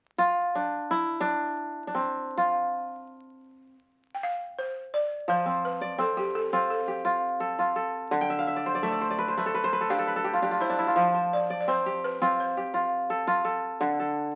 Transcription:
0.18 0.97 F4 medium
0.55 1.20 D4 medium
0.91 2.43 E4 medium
1.20 1.87 D4 medium
1.87 3.55 D4 soft
1.95 3.75 C4 medium
2.37 4.25 F4 medium
4.15 4.21 G5 medium
4.23 4.59 F5 medium
4.59 4.94 C5 medium
4.94 5.30 D5 medium
5.28 7.62 F3 medium
5.28 5.65 C5 medium
5.46 5.98 C4 medium
5.65 5.97 B4 medium
5.81 6.92 D5 medium
5.98 6.52 C4 medium
5.98 6.18 A4 medium
6.17 6.87 G4 medium
6.17 6.33 G4 medium
6.35 6.68 A4 medium
6.53 8.33 C4 medium
6.53 7.04 F4 medium
6.70 7.73 A4 medium
6.88 8.29 G4 medium
7.05 7.58 F4 medium
7.40 7.75 A4 medium
7.59 8.36 F4 medium
7.76 9.08 A4 medium
8.11 10.45 D3 medium
8.21 9.14 G5 medium
8.30 8.47 E5 medium
8.39 8.89 F5 medium
8.47 8.83 E5 medium
8.56 8.74 D5 medium
8.66 9.01 C5 medium
8.75 8.91 D5 medium
8.83 9.37 A3 medium
8.83 9.86 E5 medium
8.92 9.10 D5 medium
9.01 9.24 C5 medium
9.10 10.21 D5 medium
9.18 9.37 B4 medium
9.28 9.60 C5 medium
9.37 11.37 A3 medium
9.37 9.54 B4 medium
9.46 9.80 A4 medium
9.54 9.72 B4 medium
9.64 10.13 C5 medium
9.73 10.07 B4 medium
9.81 9.98 A4 medium
9.90 10.42 D4 medium
9.90 10.24 G4 medium
9.90 10.63 F5 medium
9.99 10.16 A4 medium
10.07 11.20 B4 medium
10.16 11.48 A4 medium
10.24 10.42 G4 medium
10.33 10.51 F4 medium
10.42 10.69 D4 medium
10.42 11.84 G4 medium
10.51 10.85 F4 medium
10.60 10.78 E4 medium
10.60 11.34 C5 medium
10.70 12.38 D4 medium
10.79 11.02 E4 medium
10.87 12.21 F4 medium
10.96 13.30 F3 medium
11.14 12.33 C5 medium
11.33 11.59 D5 medium
11.50 12.61 D5 medium
11.61 11.67 D5 medium
11.68 12.21 C4 medium
11.68 12.01 C5 medium
11.86 12.57 G4 medium
12.04 12.20 B4 medium
12.22 14.02 C4 medium
12.22 12.73 F4 medium
12.40 13.42 C5 medium
12.57 13.98 G4 medium
12.74 13.27 F4 medium
13.10 13.44 A4 medium
13.27 14.35 F4 medium
13.45 13.99 A4 medium
13.81 14.35 D3 medium
13.99 14.35 A4 medium

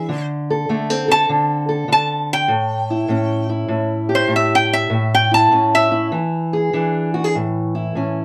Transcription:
0.00 0.25 E5 loud
0.09 0.68 D3 medium
0.50 1.08 A4 medium
0.69 1.28 D3 medium
0.69 0.90 A3 medium
0.90 2.51 C4 medium
1.08 1.68 A4 medium
1.08 1.30 A5 loud
1.29 1.87 D3 medium
1.69 4.09 A4 medium
1.88 2.47 D3 medium
1.92 2.30 A5 medium
2.33 3.49 G5 loud
2.48 3.07 A2 medium
2.90 3.49 E4 medium
3.08 3.67 A2 medium
3.08 4.89 C#4 medium
3.50 5.31 E4 medium
3.68 4.27 A2 medium
4.09 4.89 G4 medium
4.15 4.33 C5 medium
4.28 4.88 A2 medium
4.36 4.53 E5 medium
4.55 4.73 G5 medium
4.73 5.12 E5 medium
4.90 5.50 A2 medium
5.15 5.33 G5 medium
5.31 5.90 E4 medium
5.31 5.73 A5 medium
5.51 6.10 A2 medium
5.51 6.10 C#4 medium
5.75 6.06 E5 loud
5.92 6.10 E4 medium
6.12 6.72 E3 medium
6.53 7.14 G#4 medium
6.73 8.25 E3 medium
6.73 7.32 D4 medium
7.14 7.24 F#4 medium
7.24 7.35 G#4 medium
7.35 7.95 A2 medium
7.75 8.25 E4 medium
7.95 8.25 A2 medium
7.95 8.25 C#4 medium

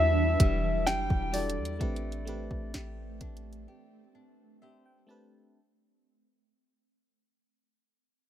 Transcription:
0.00 0.36 E2 loud
0.00 1.77 E3 medium
0.00 1.81 E3 medium
0.00 1.82 F#3 medium
0.00 0.40 G3 medium
0.00 1.31 G3 medium
0.00 0.87 D4 medium
0.00 1.32 D4 medium
0.00 1.77 D4 medium
0.00 1.33 E4 medium
0.00 1.77 E4 medium
0.00 1.34 F#4 medium
0.00 1.82 B4 medium
0.00 0.89 E5 loud
0.40 0.89 E1 loud
0.40 0.86 G3 medium
0.40 kick medium
0.40 closed hi-hat medium
0.87 1.09 F#1 loud
0.87 1.80 G3 medium
0.87 2.27 D4 medium
0.87 1.35 G5 loud
0.87 snare loud
0.87 closed hi-hat medium
1.10 1.59 E1 loud
1.10 kick loud
1.31 1.73 G3 medium
1.31 1.73 D4 medium
1.31 1.74 E4 medium
1.31 1.74 F#4 medium
1.31 1.75 A4 medium
1.31 5.05 D5 loud
1.31 closed hi-hat medium
1.31 open hi-hat medium
1.50 closed hi-hat medium
1.58 1.80 E2 loud
1.65 closed hi-hat medium
1.79 2.48 A1 loud
1.79 2.20 A3 medium
1.79 5.56 A3 medium
1.79 5.52 A3 medium
1.79 2.20 C4 medium
1.79 5.52 C4 medium
1.79 2.21 D4 medium
1.79 2.21 G4 medium
1.79 2.22 B4 medium
1.79 kick loud
1.79 closed hi-hat medium
1.96 closed hi-hat soft
2.12 closed hi-hat soft
2.25 3.88 A3 medium
2.25 3.88 C4 medium
2.25 3.88 D4 medium
2.25 3.21 D4 medium
2.25 3.89 G4 medium
2.25 3.89 B4 medium
2.25 closed hi-hat medium
2.51 2.73 A1 loud
2.51 kick loud
2.74 3.20 A1 loud
2.74 3.68 G4 medium
2.74 snare loud
2.74 closed hi-hat medium
3.21 3.66 A1 loud
3.21 4.14 D4 medium
3.21 kick loud
3.21 closed hi-hat medium
3.21 open hi-hat medium
3.37 closed hi-hat medium
3.53 closed hi-hat soft
3.68 4.62 G4 medium
4.15 4.61 D4 medium
4.62 6.16 D4 medium
4.62 6.16 G4 medium
4.62 6.16 C5 medium
4.62 4.84 E5 medium
4.86 5.07 G5 medium
5.07 5.48 A3 medium
5.07 5.48 C4 medium
5.07 5.49 D4 medium
5.07 5.49 G4 medium
5.07 5.50 B4 medium
5.07 5.52 A5 medium

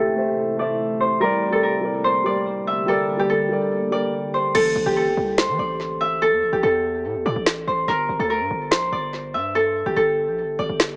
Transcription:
0.00 1.18 C3 medium
0.00 0.15 A3 medium
0.00 1.18 A3 medium
0.00 1.18 E4 medium
0.00 2.21 G4 medium
0.00 0.16 A4 medium
0.00 1.27 A4 medium
0.00 0.18 C5 medium
0.00 0.70 C5 medium
0.00 0.59 D5 medium
0.00 0.19 E5 loud
0.00 1.06 E5 medium
0.15 0.45 A3 medium
0.15 0.46 A4 medium
0.15 0.46 C5 medium
0.15 0.47 E5 medium
0.57 1.01 A3 medium
0.57 1.02 A4 medium
0.57 1.03 C5 medium
0.57 2.25 D5 medium
0.57 1.03 E5 medium
1.00 2.04 C5 medium
1.20 4.52 D3 medium
1.20 1.42 G3 medium
1.20 4.52 A#3 medium
1.20 1.43 G4 medium
1.20 4.52 G4 medium
1.20 1.58 A#4 loud
1.20 1.44 A#4 medium
1.20 1.44 D5 loud
1.51 1.73 G3 medium
1.51 1.74 G4 medium
1.51 1.69 A4 medium
1.51 1.75 A#4 medium
1.51 1.75 D5 medium
1.63 2.94 A#4 medium
1.81 2.11 G3 medium
1.81 2.12 G4 medium
1.81 2.13 A#4 medium
1.85 2.13 D5 medium
2.04 4.02 C5 medium
2.24 2.68 G3 medium
2.24 2.69 G4 medium
2.24 2.69 A#4 medium
2.24 3.92 D5 medium
2.24 2.70 D5 medium
2.67 4.40 E5 medium
2.86 3.09 G3 medium
2.86 3.10 G4 medium
2.86 3.29 A4 medium
2.86 3.10 A#4 medium
2.90 3.11 D5 loud
3.17 3.40 G3 medium
3.17 3.41 G4 medium
3.17 4.86 G4 medium
3.17 3.41 A#4 medium
3.21 3.42 D5 medium
3.30 4.54 A4 medium
3.49 3.79 G3 medium
3.49 3.79 G4 medium
3.49 3.80 A#4 medium
3.49 3.81 D5 medium
3.91 4.35 G3 medium
3.91 4.35 G4 medium
3.91 4.36 A#4 medium
3.91 5.59 D5 medium
3.91 4.37 D5 medium
4.34 5.38 C5 medium
4.55 4.75 A1 loud
4.55 4.96 A4 loud
4.55 crash medium
4.75 4.85 A1 loud
4.86 5.08 A1 loud
4.86 6.52 G4 medium
4.96 6.21 A4 medium
5.07 5.17 G1 loud
5.17 5.50 C2 loud
5.38 7.36 C5 medium
5.38 snare loud
5.48 5.58 E3 medium
5.59 6.33 A1 loud
5.59 7.25 D5 medium
6.01 7.73 E5 medium
6.22 6.63 A4 loud
6.32 6.44 E2 loud
6.42 6.52 A1 loud
6.53 6.63 A1 loud
6.53 8.88 G4 medium
6.63 7.06 E2 loud
6.63 7.94 A4 medium
7.05 7.17 A2 loud
7.15 7.25 E2 medium
7.26 7.35 A2 loud
7.26 8.92 D5 medium
7.36 7.66 A1 loud
7.46 snare loud
7.67 7.87 A1 loud
7.67 8.71 C5 medium
7.88 8.08 G1 loud
7.88 8.26 A#4 loud
8.09 8.19 G1 loud
8.19 8.42 D2 loud
8.19 8.36 A4 medium
8.30 9.61 A#4 medium
8.40 8.50 G2 loud
8.51 8.73 G1 loud
8.71 8.91 A#1 loud
8.71 10.69 C5 loud
8.71 snare loud
8.92 9.35 G1 loud
8.92 10.58 D5 medium
9.34 9.83 G2 medium
9.34 10.96 E5 medium
9.55 9.96 A4 medium
9.86 9.96 G1 loud
9.86 10.96 G4 medium
9.96 10.29 G1 loud
9.96 10.96 A4 medium
10.28 10.45 A#1 loud
10.43 10.58 G1 loud
10.59 10.69 G1 loud
10.59 10.96 D5 medium
10.69 10.96 G1 loud
10.80 snare loud

